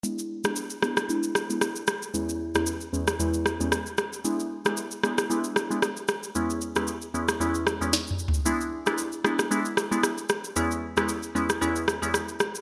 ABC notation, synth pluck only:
X:1
M:4/4
L:1/16
Q:"Swing 16ths" 1/4=114
K:Emix
V:1 name="Synth pluck"
[G,B,DE]3 [G,B,DE] z2 [G,B,DE] z [G,B,DE]3 [G,B,DE] z4 | [E,,G,B,CE]3 [E,,G,B,CE] z2 [E,,G,B,CE] z [E,,G,B,CE]3 [E,,G,B,CE] z4 | [G,B,DE]3 [G,B,DE] z2 [G,B,DE] z [G,B,DE]3 [G,B,DE] z4 | [E,,G,B,CE]3 [E,,G,B,CE] z2 [E,,G,B,CE] z [E,,G,B,CE]3 [E,,G,B,CE] z4 |
[G,B,DE]3 [G,B,DE] z2 [G,B,DE] z [G,B,DE]3 [G,B,DE] z4 | [E,,G,B,CE]3 [E,,G,B,CE] z2 [E,,G,B,CE] z [E,,G,B,CE]3 [E,,G,B,CE] z4 |]